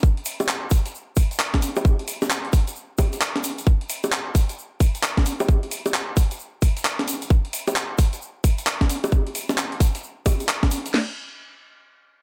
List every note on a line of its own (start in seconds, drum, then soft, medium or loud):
0.03 kick loud
0.03 shaker soft
0.17 closed hi-hat soft
0.25 open hi-hat loud
0.25 shaker medium
0.40 closed hi-hat medium
0.40 high bongo medium
0.40 shaker soft
0.48 clap loud
0.48 shaker soft
0.71 kick loud
0.71 open hi-hat loud
0.71 shaker loud
0.86 closed hi-hat medium
0.86 shaker medium
0.95 shaker soft
1.16 kick loud
1.16 open hi-hat loud
1.16 shaker loud
1.31 closed hi-hat medium
1.31 shaker medium
1.39 clap loud
1.54 kick medium
1.54 snare soft
1.54 closed hi-hat medium
1.62 open hi-hat loud
1.62 shaker loud
1.76 closed hi-hat medium
1.76 high bongo medium
1.76 shaker medium
1.85 kick loud
1.85 shaker soft
1.99 closed hi-hat soft
2.08 open hi-hat loud
2.08 shaker loud
2.22 snare soft
2.22 closed hi-hat medium
2.22 high bongo medium
2.22 shaker medium
2.30 clap loud
2.30 shaker soft
2.45 closed hi-hat soft
2.53 kick loud
2.53 open hi-hat loud
2.53 shaker medium
2.67 closed hi-hat medium
2.67 shaker medium
2.76 shaker soft
2.98 kick loud
2.98 open hi-hat loud
2.98 high bongo medium
2.98 shaker medium
3.13 closed hi-hat medium
3.13 shaker medium
3.21 clap loud
3.21 shaker soft
3.36 snare soft
3.36 closed hi-hat medium
3.44 open hi-hat loud
3.44 shaker loud
3.58 closed hi-hat medium
3.58 shaker soft
3.67 kick loud
3.67 shaker soft
3.81 closed hi-hat soft
3.90 open hi-hat loud
3.90 shaker medium
4.03 closed hi-hat medium
4.03 high bongo medium
4.03 shaker soft
4.12 clap loud
4.12 shaker soft
4.35 kick loud
4.35 open hi-hat loud
4.35 shaker medium
4.49 closed hi-hat medium
4.49 shaker soft
4.59 shaker soft
4.80 kick loud
4.80 open hi-hat loud
4.80 shaker medium
4.95 closed hi-hat medium
4.95 shaker soft
5.03 clap loud
5.03 shaker soft
5.17 kick medium
5.17 snare soft
5.17 closed hi-hat medium
5.26 open hi-hat loud
5.26 shaker medium
5.40 closed hi-hat medium
5.40 high bongo medium
5.40 shaker soft
5.49 kick loud
5.49 shaker soft
5.63 closed hi-hat soft
5.71 open hi-hat loud
5.71 shaker medium
5.86 closed hi-hat medium
5.86 high bongo medium
5.86 shaker soft
5.94 clap loud
5.94 shaker soft
6.17 kick loud
6.17 open hi-hat loud
6.17 shaker loud
6.31 closed hi-hat medium
6.31 shaker soft
6.39 shaker soft
6.62 kick loud
6.62 open hi-hat loud
6.62 shaker medium
6.77 closed hi-hat medium
6.77 shaker soft
6.85 clap loud
6.85 shaker soft
6.99 snare soft
6.99 closed hi-hat medium
7.08 open hi-hat loud
7.08 shaker loud
7.22 closed hi-hat medium
7.22 shaker soft
7.30 kick loud
7.30 shaker soft
7.45 closed hi-hat soft
7.53 open hi-hat loud
7.53 shaker medium
7.67 closed hi-hat medium
7.67 high bongo medium
7.67 shaker medium
7.76 clap loud
7.76 shaker soft
7.98 kick loud
7.98 open hi-hat loud
7.98 shaker medium
8.13 closed hi-hat medium
8.13 shaker medium
8.22 shaker soft
8.44 kick medium
8.44 open hi-hat loud
8.44 shaker medium
8.58 closed hi-hat medium
8.58 shaker soft
8.66 clap loud
8.66 shaker soft
8.81 kick medium
8.81 snare soft
8.81 closed hi-hat medium
8.90 open hi-hat loud
8.90 shaker medium
9.04 closed hi-hat medium
9.04 high bongo medium
9.04 shaker medium
9.12 kick loud
9.12 shaker soft
9.27 closed hi-hat soft
9.35 open hi-hat loud
9.35 shaker medium
9.49 snare soft
9.49 closed hi-hat medium
9.49 high bongo medium
9.49 shaker soft
9.58 clap loud
9.58 shaker soft
9.72 closed hi-hat soft
9.80 kick loud
9.80 open hi-hat loud
9.80 shaker loud
9.95 closed hi-hat medium
9.95 shaker soft
10.03 shaker soft
10.26 kick loud
10.26 open hi-hat loud
10.26 high bongo medium
10.26 shaker medium
10.40 closed hi-hat medium
10.40 shaker soft
10.49 clap loud
10.49 shaker soft
10.63 kick medium
10.63 snare soft
10.63 closed hi-hat medium
10.71 open hi-hat loud
10.71 shaker loud
10.86 closed hi-hat medium
10.86 shaker soft
10.94 snare loud
10.94 crash medium